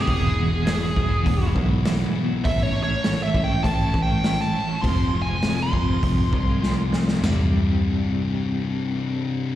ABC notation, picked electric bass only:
X:1
M:4/4
L:1/8
Q:1/4=100
K:F
V:1 name="Picked electric bass" clef=bass
E,,,3 E,,, E,,, =B,,,3 | A,,,3 A,,, A,,, A,,,3 | F,,,3 F,,, F,,, C,,3 | C,,,8 |]